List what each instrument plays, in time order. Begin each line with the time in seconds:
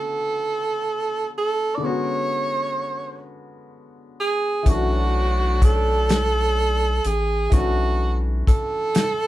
Already playing: grand piano D3 A3 B3 C#4 F#4, tenor saxophone A4
1.38 tenor saxophone A4
1.75 grand piano D3, tenor saxophone D5
1.80 grand piano G#3 B3 C#4
1.85 grand piano F#4, tenor saxophone C#5
4.20 tenor saxophone G#4
4.63 analog synth bass B1, horn section A2 D3 F#3 D4, grand piano E3 A3, kick, closed hi-hat
4.67 grand piano C#4 D4, tenor saxophone F#4
4.71 grand piano F#4
5.62 tenor saxophone A4, kick, closed hi-hat
6.09 snare, closed hi-hat
7.04 analog synth bass A1, tenor saxophone G#4, closed hi-hat
7.50 analog synth bass B1, grand piano E3 A3 C#4, tenor saxophone F#4, kick, closed hi-hat
7.56 grand piano D4 F#4
8.47 analog synth bass A1, tenor saxophone A4, kick, closed hi-hat
8.95 snare, closed hi-hat